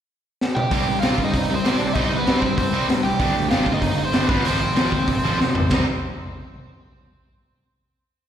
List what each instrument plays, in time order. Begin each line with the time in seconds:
0.41 snare
0.55 overdriven electric guitar G4 G5, mid tom
0.71 picked electric bass C2, distorted electric guitar C3 G3 C4, kick, open hi-hat
0.87 picked electric bass G2, distorted electric guitar C3 G3
1.00 picked electric bass C2, distorted electric guitar C3 G3 C4, overdriven electric guitar F4 F5, snare, open hi-hat
1.18 picked electric bass G2, distorted electric guitar C3 G3, kick
1.25 overdriven electric guitar D#4 D#5
1.33 picked electric bass C2, distorted electric guitar C3 G3, kick, open hi-hat
1.49 distorted electric guitar C3 G3
1.55 overdriven electric guitar C4 C5
1.65 picked electric bass C2, distorted electric guitar C3 G3 C4, snare, open hi-hat
1.77 picked electric bass C3, distorted electric guitar C3 G3, overdriven electric guitar D4 D5
1.88 overdriven electric guitar D5
1.93 picked electric bass C2, distorted electric guitar C3 G3, overdriven electric guitar D#4 D#5, kick, open hi-hat
1.98 distorted electric guitar C4
2.11 distorted electric guitar C3 G3
2.17 overdriven electric guitar B3 B4
2.27 picked electric bass G2, distorted electric guitar C3 G3 C4, snare, open hi-hat
2.39 overdriven electric guitar C4 C5, kick
2.43 distorted electric guitar C3 G3
2.58 picked electric bass C2, distorted electric guitar C3 G3, overdriven electric guitar C4 C5, kick, open hi-hat
2.73 distorted electric guitar C3 G3 C4
2.88 picked electric bass G2, distorted electric guitar C3 G3, snare, open hi-hat
3.03 picked electric bass C2, distorted electric guitar C3 G3, overdriven electric guitar G4 G5
3.19 picked electric bass G1, overdriven electric guitar G2 D3, distorted electric guitar G3 B3 D4, kick, open hi-hat
3.35 picked electric bass D2, overdriven electric guitar G2 D3, distorted electric guitar G3 B3
3.50 picked electric bass G1, overdriven electric guitar G2 D3 F4 F5, distorted electric guitar G3 B3 D4, snare, open hi-hat
3.66 picked electric bass D2, overdriven electric guitar G2 D3, distorted electric guitar G3 B3, kick
3.73 overdriven electric guitar D#4 D#5
3.82 picked electric bass G1, overdriven electric guitar G2 D3, distorted electric guitar G3 B3, kick, open hi-hat
3.97 overdriven electric guitar G2 D3, distorted electric guitar G3 B3
4.05 overdriven electric guitar C4 C5
4.12 picked electric bass G1, overdriven electric guitar G2 D3, distorted electric guitar G3 B3 D4, snare, open hi-hat
4.28 picked electric bass G#1, overdriven electric guitar F2 C3 F3 B3 B4, distorted electric guitar G#3 C4 F4, kick
4.42 picked electric bass G#1, overdriven electric guitar F2 C3 F3 C5, distorted electric guitar G#3 C4 F4, open hi-hat
4.47 overdriven electric guitar C4
4.60 overdriven electric guitar F2 C3, distorted electric guitar G#3 C4
4.75 picked electric bass D#2, overdriven electric guitar F2 C3 F3, distorted electric guitar G#3 C4 F4, snare, open hi-hat
4.92 overdriven electric guitar F2 C3, distorted electric guitar G#3 C4, kick
5.08 picked electric bass G#1, overdriven electric guitar F2 C3, distorted electric guitar G#3 C4, kick, open hi-hat
5.23 overdriven electric guitar F2 C3 F3, distorted electric guitar G#3 C4 F4
5.39 picked electric bass D#2, overdriven electric guitar F2 C3, distorted electric guitar G#3 C4, snare
5.55 picked electric bass G#1, overdriven electric guitar F2 C3, distorted electric guitar G#3 C4, floor tom
5.70 picked electric bass C2, distorted electric guitar C3 G3 C4 D#4, kick, snare, ride bell